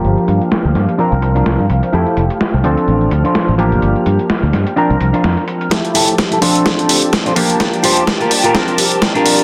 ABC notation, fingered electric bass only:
X:1
M:4/4
L:1/16
Q:"Swing 16ths" 1/4=127
K:Gdor
V:1 name="Fingered electric bass" clef=bass
G,,, z G,, z2 D,, G,, z2 C,,3 z G,, C,, z | F,, z F,,, z2 C,, D,, z A,,,2 D,, z2 A,,,2 G,,, | G,,, z G,, z2 D,, G,, z2 C,, C,, z F,, z3 | F,, z F,,, z2 C,, D,, z A,,,2 D,, z2 A,,,2 G,,, |
G,,, z G,, z2 D,, G,, z2 C,,3 C,, G,, C,, z |]